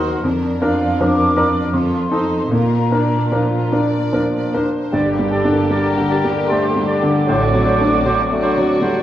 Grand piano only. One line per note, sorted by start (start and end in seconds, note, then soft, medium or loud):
0.00 0.26 D#2 soft
0.00 0.27 F#3 soft
0.00 0.27 D#4 soft
0.00 0.27 A#4 soft
0.24 0.61 F2 soft
0.62 0.96 D4 soft
0.62 0.96 A#4 soft
1.00 1.33 F3 soft
1.00 1.33 D4 soft
1.00 1.33 A#4 soft
1.37 1.69 D4 soft
1.37 1.69 A#4 soft
1.73 2.10 F2 soft
2.12 2.48 D#4 soft
2.12 2.48 A4 soft
2.51 2.91 A#2 soft
2.92 3.28 D4 soft
2.92 3.28 A#4 soft
3.32 3.68 F3 soft
3.32 3.69 D4 soft
3.32 3.69 A#4 soft
3.72 4.09 D4 soft
3.72 4.09 A#4 soft
4.12 4.50 F3 soft
4.12 4.50 D4 soft
4.12 4.50 A#4 soft
4.54 4.91 D4 soft
4.54 4.90 A#4 soft
4.93 7.25 G2 soft
5.19 5.61 G3 soft
5.45 5.88 D4 soft
5.70 6.14 G3 soft
5.97 6.40 D3 soft
6.24 6.66 G3 soft
6.51 6.77 A3 soft
6.76 7.18 G3 soft
7.03 7.29 D3 soft
7.29 9.03 A2 soft
7.54 7.96 F#3 soft
7.81 8.22 D4 soft
8.06 8.47 F#3 soft
8.32 8.73 A3 soft
8.57 8.98 F#3 soft
8.81 9.03 G3 soft